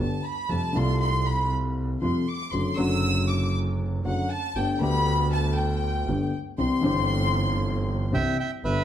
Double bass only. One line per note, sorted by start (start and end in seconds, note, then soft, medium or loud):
0.00 0.20 G1 medium
0.49 0.71 F2 medium
0.74 1.96 C2 medium
2.01 2.23 F2 medium
2.52 2.74 F#1 medium
2.77 3.98 F#1 medium
4.04 4.26 F#1 medium
4.55 4.76 G1 medium
4.80 6.01 D2 medium
6.07 6.29 G1 medium
6.58 6.80 C2 medium
6.84 8.06 G1 loud
8.13 8.34 C2 medium
8.64 8.84 G1 medium